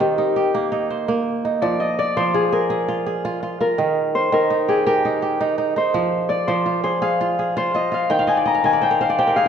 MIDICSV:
0, 0, Header, 1, 3, 480
1, 0, Start_track
1, 0, Tempo, 359712
1, 2171, Time_signature, 12, 3, 24, 8
1, 12653, End_track
2, 0, Start_track
2, 0, Title_t, "Harp"
2, 0, Program_c, 0, 46
2, 0, Note_on_c, 0, 70, 82
2, 0, Note_on_c, 0, 72, 81
2, 0, Note_on_c, 0, 74, 90
2, 7, Note_on_c, 0, 67, 72
2, 304, Note_off_c, 0, 74, 0
2, 1679, Note_off_c, 0, 72, 0
2, 2102, Note_off_c, 0, 70, 0
2, 2158, Note_on_c, 0, 74, 90
2, 2401, Note_on_c, 0, 75, 96
2, 2481, Note_off_c, 0, 74, 0
2, 2653, Note_on_c, 0, 74, 101
2, 2733, Note_off_c, 0, 75, 0
2, 2893, Note_on_c, 0, 72, 98
2, 3129, Note_on_c, 0, 68, 88
2, 3209, Note_off_c, 0, 67, 0
2, 3378, Note_on_c, 0, 70, 72
2, 4812, Note_off_c, 0, 70, 0
2, 4817, Note_on_c, 0, 70, 91
2, 5118, Note_off_c, 0, 74, 0
2, 5532, Note_off_c, 0, 72, 0
2, 5537, Note_on_c, 0, 72, 101
2, 5780, Note_off_c, 0, 70, 0
2, 5785, Note_on_c, 0, 70, 93
2, 6162, Note_off_c, 0, 68, 0
2, 6258, Note_on_c, 0, 68, 79
2, 6492, Note_off_c, 0, 70, 0
2, 6497, Note_on_c, 0, 70, 69
2, 7702, Note_off_c, 0, 72, 0
2, 7707, Note_on_c, 0, 72, 77
2, 8393, Note_on_c, 0, 74, 91
2, 8634, Note_off_c, 0, 72, 0
2, 8639, Note_on_c, 0, 72, 90
2, 9120, Note_off_c, 0, 72, 0
2, 9126, Note_on_c, 0, 72, 88
2, 9292, Note_off_c, 0, 68, 0
2, 9328, Note_off_c, 0, 70, 0
2, 9369, Note_on_c, 0, 77, 86
2, 10104, Note_off_c, 0, 72, 0
2, 10109, Note_on_c, 0, 72, 85
2, 10347, Note_on_c, 0, 75, 77
2, 10427, Note_off_c, 0, 74, 0
2, 10587, Note_off_c, 0, 77, 0
2, 10592, Note_on_c, 0, 77, 89
2, 10818, Note_on_c, 0, 79, 93
2, 11055, Note_on_c, 0, 80, 94
2, 11135, Note_off_c, 0, 79, 0
2, 11307, Note_on_c, 0, 82, 106
2, 11544, Note_off_c, 0, 80, 0
2, 11549, Note_on_c, 0, 80, 105
2, 11781, Note_on_c, 0, 79, 95
2, 11861, Note_off_c, 0, 80, 0
2, 12022, Note_off_c, 0, 77, 0
2, 12027, Note_on_c, 0, 77, 81
2, 12262, Note_off_c, 0, 79, 0
2, 12268, Note_on_c, 0, 79, 86
2, 12484, Note_off_c, 0, 77, 0
2, 12489, Note_on_c, 0, 77, 96
2, 12570, Note_off_c, 0, 77, 0
2, 12653, Note_off_c, 0, 72, 0
2, 12653, Note_off_c, 0, 75, 0
2, 12653, Note_off_c, 0, 79, 0
2, 12653, Note_off_c, 0, 82, 0
2, 12653, End_track
3, 0, Start_track
3, 0, Title_t, "Kora"
3, 0, Program_c, 1, 46
3, 0, Note_on_c, 1, 60, 81
3, 0, Note_on_c, 1, 65, 64
3, 0, Note_on_c, 1, 67, 63
3, 0, Note_on_c, 1, 72, 60
3, 2, Note_on_c, 1, 51, 71
3, 241, Note_on_c, 1, 63, 62
3, 477, Note_off_c, 1, 67, 0
3, 482, Note_on_c, 1, 67, 65
3, 728, Note_on_c, 1, 58, 80
3, 948, Note_off_c, 1, 60, 0
3, 953, Note_off_c, 1, 63, 0
3, 958, Note_on_c, 1, 63, 64
3, 1102, Note_off_c, 1, 72, 0
3, 1207, Note_on_c, 1, 72, 59
3, 1440, Note_off_c, 1, 58, 0
3, 1445, Note_on_c, 1, 58, 74
3, 1779, Note_off_c, 1, 65, 0
3, 1927, Note_off_c, 1, 63, 0
3, 1932, Note_on_c, 1, 63, 62
3, 2165, Note_on_c, 1, 53, 84
3, 2238, Note_off_c, 1, 51, 0
3, 2367, Note_off_c, 1, 67, 0
3, 2651, Note_on_c, 1, 74, 67
3, 2731, Note_off_c, 1, 63, 0
3, 2791, Note_off_c, 1, 72, 0
3, 2877, Note_off_c, 1, 53, 0
3, 2893, Note_on_c, 1, 53, 81
3, 3126, Note_on_c, 1, 65, 71
3, 3367, Note_on_c, 1, 68, 69
3, 3597, Note_off_c, 1, 68, 0
3, 3602, Note_on_c, 1, 68, 83
3, 3844, Note_off_c, 1, 65, 0
3, 3849, Note_on_c, 1, 65, 67
3, 4019, Note_off_c, 1, 58, 0
3, 4084, Note_off_c, 1, 68, 0
3, 4089, Note_on_c, 1, 68, 68
3, 4129, Note_off_c, 1, 74, 0
3, 4329, Note_off_c, 1, 65, 0
3, 4334, Note_on_c, 1, 65, 82
3, 4567, Note_off_c, 1, 65, 0
3, 4572, Note_on_c, 1, 65, 64
3, 4806, Note_off_c, 1, 65, 0
3, 4811, Note_on_c, 1, 65, 69
3, 5048, Note_on_c, 1, 51, 80
3, 5121, Note_off_c, 1, 53, 0
3, 5752, Note_off_c, 1, 51, 0
3, 5768, Note_on_c, 1, 51, 82
3, 5910, Note_off_c, 1, 68, 0
3, 6009, Note_on_c, 1, 63, 69
3, 6251, Note_on_c, 1, 67, 69
3, 6487, Note_off_c, 1, 67, 0
3, 6492, Note_on_c, 1, 67, 91
3, 6734, Note_off_c, 1, 63, 0
3, 6739, Note_on_c, 1, 63, 67
3, 6831, Note_off_c, 1, 65, 0
3, 6964, Note_off_c, 1, 67, 0
3, 6970, Note_on_c, 1, 67, 65
3, 7208, Note_off_c, 1, 63, 0
3, 7214, Note_on_c, 1, 63, 84
3, 7440, Note_off_c, 1, 63, 0
3, 7446, Note_on_c, 1, 63, 69
3, 7684, Note_off_c, 1, 63, 0
3, 7689, Note_on_c, 1, 63, 73
3, 7928, Note_on_c, 1, 53, 86
3, 7999, Note_off_c, 1, 51, 0
3, 8405, Note_on_c, 1, 74, 64
3, 8485, Note_off_c, 1, 63, 0
3, 8631, Note_off_c, 1, 53, 0
3, 8647, Note_on_c, 1, 53, 85
3, 8854, Note_off_c, 1, 67, 0
3, 8883, Note_on_c, 1, 65, 67
3, 9122, Note_on_c, 1, 68, 70
3, 9358, Note_off_c, 1, 68, 0
3, 9364, Note_on_c, 1, 68, 89
3, 9611, Note_off_c, 1, 65, 0
3, 9616, Note_on_c, 1, 65, 74
3, 9855, Note_off_c, 1, 68, 0
3, 9860, Note_on_c, 1, 68, 66
3, 9884, Note_off_c, 1, 74, 0
3, 10091, Note_off_c, 1, 65, 0
3, 10096, Note_on_c, 1, 65, 87
3, 10328, Note_off_c, 1, 65, 0
3, 10334, Note_on_c, 1, 65, 72
3, 10559, Note_off_c, 1, 65, 0
3, 10564, Note_on_c, 1, 65, 67
3, 10807, Note_on_c, 1, 51, 86
3, 10811, Note_on_c, 1, 79, 71
3, 10877, Note_off_c, 1, 53, 0
3, 10892, Note_off_c, 1, 68, 0
3, 10928, Note_on_c, 1, 77, 71
3, 11038, Note_on_c, 1, 75, 72
3, 11167, Note_on_c, 1, 74, 68
3, 11278, Note_off_c, 1, 75, 0
3, 11283, Note_on_c, 1, 75, 71
3, 11398, Note_off_c, 1, 77, 0
3, 11403, Note_on_c, 1, 77, 73
3, 11515, Note_off_c, 1, 51, 0
3, 11524, Note_off_c, 1, 75, 0
3, 11529, Note_on_c, 1, 75, 67
3, 11530, Note_on_c, 1, 51, 75
3, 11609, Note_off_c, 1, 74, 0
3, 11649, Note_on_c, 1, 74, 77
3, 11763, Note_on_c, 1, 72, 71
3, 11885, Note_on_c, 1, 70, 70
3, 12012, Note_off_c, 1, 72, 0
3, 12017, Note_on_c, 1, 72, 72
3, 12055, Note_off_c, 1, 79, 0
3, 12131, Note_off_c, 1, 74, 0
3, 12136, Note_on_c, 1, 74, 71
3, 12216, Note_off_c, 1, 75, 0
3, 12254, Note_off_c, 1, 72, 0
3, 12257, Note_on_c, 1, 67, 88
3, 12259, Note_on_c, 1, 72, 71
3, 12366, Note_off_c, 1, 70, 0
3, 12371, Note_on_c, 1, 70, 68
3, 12499, Note_on_c, 1, 68, 71
3, 12584, Note_off_c, 1, 65, 0
3, 12614, Note_off_c, 1, 67, 0
3, 12653, Note_off_c, 1, 51, 0
3, 12653, Note_off_c, 1, 68, 0
3, 12653, Note_off_c, 1, 70, 0
3, 12653, Note_off_c, 1, 72, 0
3, 12653, Note_off_c, 1, 74, 0
3, 12653, Note_off_c, 1, 77, 0
3, 12653, End_track
0, 0, End_of_file